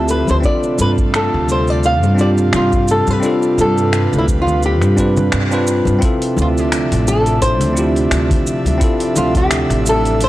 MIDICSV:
0, 0, Header, 1, 6, 480
1, 0, Start_track
1, 0, Tempo, 697674
1, 307, Time_signature, 4, 2, 24, 8
1, 7079, End_track
2, 0, Start_track
2, 0, Title_t, "Nylon-string guitar"
2, 0, Program_c, 0, 24
2, 73, Note_on_c, 0, 71, 85
2, 194, Note_off_c, 0, 71, 0
2, 211, Note_on_c, 0, 72, 88
2, 245, Note_off_c, 0, 72, 0
2, 313, Note_on_c, 0, 74, 97
2, 557, Note_off_c, 0, 74, 0
2, 560, Note_on_c, 0, 71, 97
2, 623, Note_off_c, 0, 71, 0
2, 796, Note_on_c, 0, 69, 89
2, 1015, Note_off_c, 0, 69, 0
2, 1044, Note_on_c, 0, 72, 97
2, 1169, Note_off_c, 0, 72, 0
2, 1169, Note_on_c, 0, 74, 101
2, 1274, Note_off_c, 0, 74, 0
2, 1277, Note_on_c, 0, 77, 109
2, 1495, Note_off_c, 0, 77, 0
2, 1518, Note_on_c, 0, 74, 102
2, 1582, Note_off_c, 0, 74, 0
2, 1762, Note_on_c, 0, 65, 91
2, 2001, Note_off_c, 0, 65, 0
2, 2003, Note_on_c, 0, 69, 86
2, 2136, Note_off_c, 0, 69, 0
2, 2136, Note_on_c, 0, 71, 97
2, 2481, Note_off_c, 0, 71, 0
2, 2484, Note_on_c, 0, 69, 99
2, 2876, Note_off_c, 0, 69, 0
2, 2879, Note_on_c, 0, 64, 80
2, 2920, Note_off_c, 0, 64, 0
2, 3039, Note_on_c, 0, 65, 84
2, 3197, Note_off_c, 0, 65, 0
2, 3203, Note_on_c, 0, 67, 85
2, 3888, Note_off_c, 0, 67, 0
2, 4415, Note_on_c, 0, 65, 83
2, 4449, Note_off_c, 0, 65, 0
2, 4537, Note_on_c, 0, 67, 90
2, 4872, Note_on_c, 0, 69, 92
2, 4886, Note_off_c, 0, 67, 0
2, 5093, Note_off_c, 0, 69, 0
2, 5105, Note_on_c, 0, 72, 108
2, 5799, Note_off_c, 0, 72, 0
2, 6311, Note_on_c, 0, 65, 81
2, 6433, Note_off_c, 0, 65, 0
2, 6446, Note_on_c, 0, 67, 95
2, 6800, Note_off_c, 0, 67, 0
2, 6806, Note_on_c, 0, 69, 97
2, 7020, Note_off_c, 0, 69, 0
2, 7044, Note_on_c, 0, 72, 104
2, 7079, Note_off_c, 0, 72, 0
2, 7079, End_track
3, 0, Start_track
3, 0, Title_t, "Tine electric piano"
3, 0, Program_c, 1, 4
3, 0, Control_c, 1, 64, 127
3, 0, Note_on_c, 1, 60, 75
3, 0, Note_on_c, 1, 64, 66
3, 0, Note_on_c, 1, 65, 71
3, 0, Note_on_c, 1, 67, 85
3, 268, Note_off_c, 1, 60, 0
3, 277, Note_off_c, 1, 64, 0
3, 278, Note_on_c, 1, 60, 85
3, 284, Note_off_c, 1, 65, 0
3, 292, Note_off_c, 1, 67, 0
3, 292, Note_on_c, 1, 62, 80
3, 308, Note_on_c, 1, 65, 78
3, 316, Control_c, 1, 64, 0
3, 322, Note_on_c, 1, 69, 89
3, 441, Control_c, 1, 64, 127
3, 1467, Note_off_c, 1, 60, 0
3, 1474, Note_off_c, 1, 62, 0
3, 1478, Note_on_c, 1, 60, 77
3, 1482, Note_off_c, 1, 65, 0
3, 1489, Note_off_c, 1, 69, 0
3, 1490, Note_on_c, 1, 62, 70
3, 1505, Note_on_c, 1, 65, 71
3, 1521, Note_on_c, 1, 67, 83
3, 2187, Note_off_c, 1, 60, 0
3, 2193, Note_off_c, 1, 62, 0
3, 2200, Note_off_c, 1, 65, 0
3, 2201, Note_on_c, 1, 60, 83
3, 2208, Note_off_c, 1, 67, 0
3, 2217, Note_on_c, 1, 62, 82
3, 2231, Note_on_c, 1, 65, 75
3, 2243, Note_on_c, 1, 69, 96
3, 3388, Note_off_c, 1, 60, 0
3, 3396, Note_off_c, 1, 62, 0
3, 3403, Note_off_c, 1, 65, 0
3, 3409, Note_off_c, 1, 69, 0
3, 3415, Note_on_c, 1, 60, 80
3, 3419, Note_on_c, 1, 62, 75
3, 3429, Note_on_c, 1, 65, 79
3, 3436, Note_on_c, 1, 71, 90
3, 3522, Note_off_c, 1, 60, 0
3, 3524, Note_off_c, 1, 62, 0
3, 3530, Note_off_c, 1, 65, 0
3, 3533, Note_off_c, 1, 71, 0
3, 3789, Note_on_c, 1, 60, 78
3, 3796, Note_on_c, 1, 62, 74
3, 3805, Note_on_c, 1, 65, 74
3, 3810, Note_on_c, 1, 71, 88
3, 4110, Note_off_c, 1, 60, 0
3, 4119, Note_off_c, 1, 62, 0
3, 4119, Note_on_c, 1, 60, 85
3, 4124, Note_off_c, 1, 65, 0
3, 4126, Note_off_c, 1, 71, 0
3, 4133, Note_on_c, 1, 64, 80
3, 4146, Note_on_c, 1, 65, 78
3, 4155, Control_c, 1, 64, 0
3, 4163, Note_on_c, 1, 69, 91
3, 4266, Control_c, 1, 64, 127
3, 5307, Note_off_c, 1, 60, 0
3, 5315, Note_off_c, 1, 64, 0
3, 5318, Note_on_c, 1, 60, 74
3, 5321, Note_off_c, 1, 65, 0
3, 5329, Note_off_c, 1, 69, 0
3, 5335, Note_on_c, 1, 64, 76
3, 5348, Note_on_c, 1, 65, 70
3, 5361, Note_on_c, 1, 67, 84
3, 6027, Note_off_c, 1, 60, 0
3, 6035, Note_off_c, 1, 64, 0
3, 6040, Note_on_c, 1, 60, 86
3, 6042, Note_off_c, 1, 65, 0
3, 6048, Note_off_c, 1, 67, 0
3, 6053, Note_on_c, 1, 64, 82
3, 6067, Note_on_c, 1, 65, 75
3, 6081, Note_on_c, 1, 69, 96
3, 7079, Note_off_c, 1, 60, 0
3, 7079, Note_off_c, 1, 64, 0
3, 7079, Note_off_c, 1, 65, 0
3, 7079, Note_off_c, 1, 69, 0
3, 7079, End_track
4, 0, Start_track
4, 0, Title_t, "Analog synth pad"
4, 0, Program_c, 2, 89
4, 0, Note_on_c, 2, 50, 82
4, 0, Note_on_c, 2, 53, 74
4, 0, Note_on_c, 2, 60, 73
4, 0, Note_on_c, 2, 76, 84
4, 275, Note_off_c, 2, 50, 0
4, 276, Note_off_c, 2, 60, 0
4, 276, Note_off_c, 2, 76, 0
4, 277, Note_off_c, 2, 53, 0
4, 294, Note_on_c, 2, 55, 74
4, 296, Note_on_c, 2, 57, 72
4, 298, Note_on_c, 2, 65, 87
4, 302, Note_on_c, 2, 48, 82
4, 2202, Note_off_c, 2, 57, 0
4, 2222, Note_on_c, 2, 71, 72
4, 4113, Note_off_c, 2, 55, 0
4, 4115, Note_off_c, 2, 65, 0
4, 4117, Note_off_c, 2, 48, 0
4, 4125, Note_off_c, 2, 71, 0
4, 4138, Note_on_c, 2, 53, 72
4, 4142, Note_on_c, 2, 62, 74
4, 4143, Note_on_c, 2, 76, 93
4, 4144, Note_on_c, 2, 48, 78
4, 7079, Note_off_c, 2, 48, 0
4, 7079, Note_off_c, 2, 53, 0
4, 7079, Note_off_c, 2, 62, 0
4, 7079, Note_off_c, 2, 76, 0
4, 7079, End_track
5, 0, Start_track
5, 0, Title_t, "Upright bass"
5, 0, Program_c, 3, 32
5, 0, Note_on_c, 3, 38, 99
5, 142, Note_off_c, 3, 38, 0
5, 203, Note_on_c, 3, 38, 97
5, 281, Note_off_c, 3, 38, 0
5, 548, Note_on_c, 3, 43, 92
5, 865, Note_off_c, 3, 43, 0
5, 922, Note_on_c, 3, 38, 104
5, 1398, Note_off_c, 3, 38, 0
5, 1398, Note_on_c, 3, 43, 94
5, 1701, Note_off_c, 3, 43, 0
5, 1744, Note_on_c, 3, 43, 91
5, 2063, Note_off_c, 3, 43, 0
5, 2115, Note_on_c, 3, 43, 92
5, 2196, Note_off_c, 3, 43, 0
5, 2462, Note_on_c, 3, 43, 100
5, 2782, Note_off_c, 3, 43, 0
5, 2840, Note_on_c, 3, 38, 103
5, 3316, Note_off_c, 3, 38, 0
5, 3316, Note_on_c, 3, 43, 90
5, 3620, Note_off_c, 3, 43, 0
5, 3668, Note_on_c, 3, 43, 88
5, 3984, Note_off_c, 3, 43, 0
5, 4037, Note_on_c, 3, 43, 91
5, 4117, Note_off_c, 3, 43, 0
5, 4386, Note_on_c, 3, 38, 96
5, 4703, Note_off_c, 3, 38, 0
5, 4759, Note_on_c, 3, 33, 105
5, 5234, Note_off_c, 3, 33, 0
5, 5234, Note_on_c, 3, 38, 93
5, 5539, Note_off_c, 3, 38, 0
5, 5580, Note_on_c, 3, 38, 98
5, 5901, Note_off_c, 3, 38, 0
5, 5953, Note_on_c, 3, 38, 89
5, 6035, Note_off_c, 3, 38, 0
5, 6299, Note_on_c, 3, 38, 98
5, 6620, Note_off_c, 3, 38, 0
5, 6672, Note_on_c, 3, 33, 111
5, 7079, Note_off_c, 3, 33, 0
5, 7079, End_track
6, 0, Start_track
6, 0, Title_t, "Drums"
6, 58, Note_on_c, 9, 69, 69
6, 126, Note_off_c, 9, 69, 0
6, 188, Note_on_c, 9, 63, 90
6, 195, Note_on_c, 9, 69, 33
6, 257, Note_off_c, 9, 63, 0
6, 264, Note_off_c, 9, 69, 0
6, 300, Note_on_c, 9, 69, 40
6, 304, Note_on_c, 9, 36, 113
6, 369, Note_off_c, 9, 69, 0
6, 372, Note_off_c, 9, 36, 0
6, 435, Note_on_c, 9, 69, 30
6, 504, Note_off_c, 9, 69, 0
6, 540, Note_on_c, 9, 63, 84
6, 540, Note_on_c, 9, 69, 71
6, 609, Note_off_c, 9, 63, 0
6, 609, Note_off_c, 9, 69, 0
6, 675, Note_on_c, 9, 36, 95
6, 675, Note_on_c, 9, 69, 28
6, 744, Note_off_c, 9, 36, 0
6, 744, Note_off_c, 9, 69, 0
6, 783, Note_on_c, 9, 26, 97
6, 786, Note_on_c, 9, 69, 41
6, 852, Note_off_c, 9, 26, 0
6, 855, Note_off_c, 9, 69, 0
6, 1017, Note_on_c, 9, 63, 63
6, 1024, Note_on_c, 9, 69, 75
6, 1086, Note_off_c, 9, 63, 0
6, 1093, Note_off_c, 9, 69, 0
6, 1153, Note_on_c, 9, 69, 30
6, 1222, Note_off_c, 9, 69, 0
6, 1263, Note_on_c, 9, 69, 39
6, 1331, Note_off_c, 9, 69, 0
6, 1397, Note_on_c, 9, 69, 29
6, 1400, Note_on_c, 9, 63, 89
6, 1466, Note_off_c, 9, 69, 0
6, 1469, Note_off_c, 9, 63, 0
6, 1502, Note_on_c, 9, 69, 68
6, 1571, Note_off_c, 9, 69, 0
6, 1636, Note_on_c, 9, 69, 28
6, 1704, Note_off_c, 9, 69, 0
6, 1739, Note_on_c, 9, 26, 92
6, 1742, Note_on_c, 9, 69, 41
6, 1745, Note_on_c, 9, 63, 61
6, 1808, Note_off_c, 9, 26, 0
6, 1811, Note_off_c, 9, 69, 0
6, 1814, Note_off_c, 9, 63, 0
6, 1874, Note_on_c, 9, 69, 28
6, 1876, Note_on_c, 9, 36, 96
6, 1943, Note_off_c, 9, 69, 0
6, 1945, Note_off_c, 9, 36, 0
6, 1981, Note_on_c, 9, 69, 73
6, 2050, Note_off_c, 9, 69, 0
6, 2113, Note_on_c, 9, 69, 31
6, 2116, Note_on_c, 9, 63, 88
6, 2182, Note_off_c, 9, 69, 0
6, 2185, Note_off_c, 9, 63, 0
6, 2220, Note_on_c, 9, 69, 41
6, 2289, Note_off_c, 9, 69, 0
6, 2355, Note_on_c, 9, 69, 29
6, 2424, Note_off_c, 9, 69, 0
6, 2466, Note_on_c, 9, 69, 77
6, 2470, Note_on_c, 9, 63, 90
6, 2535, Note_off_c, 9, 69, 0
6, 2538, Note_off_c, 9, 63, 0
6, 2599, Note_on_c, 9, 69, 30
6, 2668, Note_off_c, 9, 69, 0
6, 2703, Note_on_c, 9, 26, 98
6, 2706, Note_on_c, 9, 69, 43
6, 2772, Note_off_c, 9, 26, 0
6, 2775, Note_off_c, 9, 69, 0
6, 2842, Note_on_c, 9, 69, 29
6, 2911, Note_off_c, 9, 69, 0
6, 2944, Note_on_c, 9, 36, 99
6, 2945, Note_on_c, 9, 63, 55
6, 2948, Note_on_c, 9, 69, 74
6, 3013, Note_off_c, 9, 36, 0
6, 3014, Note_off_c, 9, 63, 0
6, 3016, Note_off_c, 9, 69, 0
6, 3076, Note_on_c, 9, 64, 89
6, 3083, Note_on_c, 9, 69, 33
6, 3145, Note_off_c, 9, 64, 0
6, 3151, Note_off_c, 9, 69, 0
6, 3184, Note_on_c, 9, 69, 40
6, 3253, Note_off_c, 9, 69, 0
6, 3313, Note_on_c, 9, 26, 31
6, 3313, Note_on_c, 9, 63, 80
6, 3316, Note_on_c, 9, 69, 31
6, 3382, Note_off_c, 9, 26, 0
6, 3382, Note_off_c, 9, 63, 0
6, 3385, Note_off_c, 9, 69, 0
6, 3424, Note_on_c, 9, 36, 51
6, 3424, Note_on_c, 9, 69, 71
6, 3493, Note_off_c, 9, 36, 0
6, 3493, Note_off_c, 9, 69, 0
6, 3555, Note_on_c, 9, 69, 28
6, 3559, Note_on_c, 9, 64, 90
6, 3560, Note_on_c, 9, 62, 65
6, 3624, Note_off_c, 9, 69, 0
6, 3628, Note_off_c, 9, 62, 0
6, 3628, Note_off_c, 9, 64, 0
6, 3661, Note_on_c, 9, 26, 98
6, 3664, Note_on_c, 9, 69, 40
6, 3668, Note_on_c, 9, 63, 66
6, 3729, Note_off_c, 9, 26, 0
6, 3733, Note_off_c, 9, 69, 0
6, 3736, Note_off_c, 9, 63, 0
6, 3796, Note_on_c, 9, 69, 30
6, 3864, Note_off_c, 9, 69, 0
6, 3902, Note_on_c, 9, 69, 71
6, 3971, Note_off_c, 9, 69, 0
6, 4027, Note_on_c, 9, 63, 94
6, 4039, Note_on_c, 9, 69, 32
6, 4096, Note_off_c, 9, 63, 0
6, 4108, Note_off_c, 9, 69, 0
6, 4142, Note_on_c, 9, 46, 68
6, 4144, Note_on_c, 9, 36, 117
6, 4145, Note_on_c, 9, 69, 43
6, 4210, Note_off_c, 9, 46, 0
6, 4213, Note_off_c, 9, 36, 0
6, 4214, Note_off_c, 9, 69, 0
6, 4278, Note_on_c, 9, 46, 48
6, 4347, Note_off_c, 9, 46, 0
6, 4379, Note_on_c, 9, 63, 89
6, 4382, Note_on_c, 9, 64, 77
6, 4389, Note_on_c, 9, 69, 83
6, 4448, Note_off_c, 9, 63, 0
6, 4450, Note_off_c, 9, 64, 0
6, 4458, Note_off_c, 9, 69, 0
6, 4525, Note_on_c, 9, 69, 31
6, 4594, Note_off_c, 9, 69, 0
6, 4624, Note_on_c, 9, 26, 104
6, 4624, Note_on_c, 9, 46, 73
6, 4627, Note_on_c, 9, 69, 44
6, 4693, Note_off_c, 9, 26, 0
6, 4693, Note_off_c, 9, 46, 0
6, 4696, Note_off_c, 9, 69, 0
6, 4760, Note_on_c, 9, 46, 47
6, 4764, Note_on_c, 9, 69, 30
6, 4829, Note_off_c, 9, 46, 0
6, 4833, Note_off_c, 9, 69, 0
6, 4864, Note_on_c, 9, 63, 57
6, 4868, Note_on_c, 9, 69, 80
6, 4932, Note_off_c, 9, 63, 0
6, 4937, Note_off_c, 9, 69, 0
6, 4995, Note_on_c, 9, 46, 31
6, 4999, Note_on_c, 9, 69, 32
6, 5064, Note_off_c, 9, 46, 0
6, 5068, Note_off_c, 9, 69, 0
6, 5103, Note_on_c, 9, 46, 71
6, 5105, Note_on_c, 9, 36, 67
6, 5107, Note_on_c, 9, 69, 43
6, 5172, Note_off_c, 9, 46, 0
6, 5173, Note_off_c, 9, 36, 0
6, 5176, Note_off_c, 9, 69, 0
6, 5233, Note_on_c, 9, 63, 107
6, 5234, Note_on_c, 9, 46, 45
6, 5237, Note_on_c, 9, 69, 31
6, 5301, Note_off_c, 9, 63, 0
6, 5303, Note_off_c, 9, 46, 0
6, 5306, Note_off_c, 9, 69, 0
6, 5345, Note_on_c, 9, 69, 78
6, 5413, Note_off_c, 9, 69, 0
6, 5479, Note_on_c, 9, 46, 29
6, 5482, Note_on_c, 9, 69, 33
6, 5547, Note_off_c, 9, 46, 0
6, 5551, Note_off_c, 9, 69, 0
6, 5581, Note_on_c, 9, 26, 104
6, 5581, Note_on_c, 9, 46, 72
6, 5583, Note_on_c, 9, 63, 65
6, 5585, Note_on_c, 9, 69, 44
6, 5650, Note_off_c, 9, 26, 0
6, 5650, Note_off_c, 9, 46, 0
6, 5652, Note_off_c, 9, 63, 0
6, 5653, Note_off_c, 9, 69, 0
6, 5715, Note_on_c, 9, 64, 77
6, 5716, Note_on_c, 9, 36, 103
6, 5717, Note_on_c, 9, 46, 47
6, 5720, Note_on_c, 9, 69, 30
6, 5784, Note_off_c, 9, 64, 0
6, 5785, Note_off_c, 9, 36, 0
6, 5786, Note_off_c, 9, 46, 0
6, 5789, Note_off_c, 9, 69, 0
6, 5825, Note_on_c, 9, 69, 81
6, 5894, Note_off_c, 9, 69, 0
6, 5958, Note_on_c, 9, 46, 36
6, 5962, Note_on_c, 9, 69, 35
6, 5964, Note_on_c, 9, 63, 102
6, 6027, Note_off_c, 9, 46, 0
6, 6030, Note_off_c, 9, 69, 0
6, 6033, Note_off_c, 9, 63, 0
6, 6061, Note_on_c, 9, 46, 65
6, 6062, Note_on_c, 9, 36, 119
6, 6065, Note_on_c, 9, 69, 48
6, 6130, Note_off_c, 9, 36, 0
6, 6130, Note_off_c, 9, 46, 0
6, 6134, Note_off_c, 9, 69, 0
6, 6194, Note_on_c, 9, 46, 46
6, 6263, Note_off_c, 9, 46, 0
6, 6302, Note_on_c, 9, 69, 85
6, 6303, Note_on_c, 9, 64, 80
6, 6312, Note_on_c, 9, 63, 96
6, 6371, Note_off_c, 9, 69, 0
6, 6372, Note_off_c, 9, 64, 0
6, 6381, Note_off_c, 9, 63, 0
6, 6432, Note_on_c, 9, 46, 31
6, 6434, Note_on_c, 9, 36, 98
6, 6435, Note_on_c, 9, 69, 30
6, 6501, Note_off_c, 9, 46, 0
6, 6502, Note_off_c, 9, 36, 0
6, 6504, Note_off_c, 9, 69, 0
6, 6541, Note_on_c, 9, 26, 102
6, 6541, Note_on_c, 9, 46, 70
6, 6544, Note_on_c, 9, 69, 44
6, 6609, Note_off_c, 9, 26, 0
6, 6609, Note_off_c, 9, 46, 0
6, 6613, Note_off_c, 9, 69, 0
6, 6677, Note_on_c, 9, 46, 46
6, 6681, Note_on_c, 9, 69, 33
6, 6746, Note_off_c, 9, 46, 0
6, 6750, Note_off_c, 9, 69, 0
6, 6784, Note_on_c, 9, 69, 83
6, 6785, Note_on_c, 9, 63, 63
6, 6853, Note_off_c, 9, 69, 0
6, 6854, Note_off_c, 9, 63, 0
6, 6917, Note_on_c, 9, 46, 32
6, 6921, Note_on_c, 9, 69, 36
6, 6986, Note_off_c, 9, 46, 0
6, 6989, Note_off_c, 9, 69, 0
6, 7021, Note_on_c, 9, 46, 64
6, 7025, Note_on_c, 9, 69, 44
6, 7079, Note_off_c, 9, 46, 0
6, 7079, Note_off_c, 9, 69, 0
6, 7079, End_track
0, 0, End_of_file